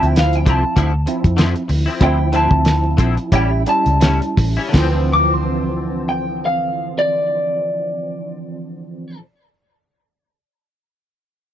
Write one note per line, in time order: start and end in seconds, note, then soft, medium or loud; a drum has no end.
0.00 0.43 D2 medium
0.00 0.90 F3 medium
0.00 0.90 C4 medium
0.00 0.90 E4 medium
0.00 muted clean electric guitar stroke soft
0.00 closed hi-hat soft
0.06 0.17 G5 medium
0.16 0.35 F5 medium
0.16 muted clean electric guitar stroke soft
0.16 snare loud
0.16 closed hi-hat medium
0.33 0.50 G5 medium
0.33 closed hi-hat soft
0.46 0.62 C2 medium
0.46 0.63 D3 medium
0.46 0.64 F3 medium
0.46 0.63 C4 medium
0.46 0.62 E4 medium
0.46 kick medium
0.46 closed hi-hat medium
0.50 1.67 A5 medium
0.63 muted clean electric guitar stroke soft
0.76 1.05 D2 medium
0.76 0.93 D3 medium
0.76 0.93 F3 medium
0.76 0.93 C4 medium
0.76 0.92 E4 medium
0.76 kick medium
0.76 closed hi-hat medium
0.93 muted clean electric guitar stroke soft
1.06 1.88 F3 medium
1.06 1.88 C4 medium
1.06 1.88 E4 medium
1.06 muted clean electric guitar stroke soft
1.06 closed hi-hat medium
1.24 1.53 F2 medium
1.24 kick medium
1.24 closed hi-hat soft
1.37 1.55 D3 medium
1.37 1.55 F3 medium
1.37 1.54 C4 medium
1.37 1.53 E4 medium
1.37 snare loud
1.37 closed hi-hat medium
1.54 muted clean electric guitar stroke soft
1.54 closed hi-hat soft
1.68 1.86 D2 medium
1.68 muted clean electric guitar stroke soft
1.68 open hi-hat medium
1.86 2.00 F3 soft
1.86 2.01 C4 soft
1.86 2.00 E4 medium
2.00 2.48 D2 loud
2.00 2.18 D3 medium
2.00 2.28 F3 medium
2.00 2.19 F3 medium
2.00 2.28 C4 medium
2.00 2.19 C4 medium
2.00 2.28 E4 medium
2.00 2.18 E4 medium
2.00 2.33 G5 loud
2.00 kick loud
2.00 closed hi-hat medium
2.19 muted clean electric guitar stroke soft
2.32 2.51 D3 medium
2.32 3.32 F3 medium
2.32 2.51 F3 medium
2.32 3.32 C4 medium
2.32 2.50 C4 medium
2.32 3.31 E4 medium
2.32 2.50 E4 medium
2.32 3.31 A5 medium
2.32 closed hi-hat medium
2.51 2.95 D2 medium
2.51 muted clean electric guitar stroke soft
2.51 kick medium
2.65 muted clean electric guitar stroke soft
2.65 snare loud
2.65 closed hi-hat medium
2.97 3.16 A#1 medium
2.97 3.16 D3 medium
2.97 3.17 F3 medium
2.97 3.16 C4 medium
2.97 3.16 E4 medium
2.97 kick medium
2.97 closed hi-hat medium
3.17 muted clean electric guitar stroke soft
3.17 closed hi-hat soft
3.32 3.64 A1 medium
3.32 3.51 A2 medium
3.32 3.62 G3 medium
3.32 3.51 G3 medium
3.32 3.62 C#4 medium
3.32 3.51 C#4 medium
3.32 3.62 E4 medium
3.32 3.50 E4 medium
3.32 3.67 G5 medium
3.32 kick medium
3.32 closed hi-hat medium
3.51 muted clean electric guitar stroke soft
3.66 4.59 G3 medium
3.66 4.59 C#4 medium
3.66 4.59 E4 medium
3.66 4.72 A5 medium
3.66 muted clean electric guitar stroke soft
3.66 closed hi-hat medium
3.86 4.19 C#2 medium
3.86 closed hi-hat soft
4.01 4.21 A2 medium
4.01 4.21 G3 medium
4.01 4.21 C#4 medium
4.01 4.20 E4 medium
4.01 snare loud
4.01 closed hi-hat medium
4.21 muted clean electric guitar stroke soft
4.21 closed hi-hat soft
4.37 4.56 A1 medium
4.37 muted clean electric guitar stroke soft
4.37 kick medium
4.37 open hi-hat medium
4.57 4.75 G3 soft
4.57 4.74 C#4 soft
4.57 4.73 E4 medium
4.69 9.18 D3 medium
4.69 9.16 F3 medium
4.74 9.17 D2 medium
4.74 9.18 E3 medium
4.74 9.22 F3 medium
4.74 9.17 C4 medium
4.74 kick loud
4.74 snare medium
4.74 splash medium
4.82 9.25 C4 medium
5.13 5.34 D6 loud
5.34 6.05 C6 medium
6.09 6.43 G5 medium
6.46 6.96 F5 medium
6.99 9.18 D5 loud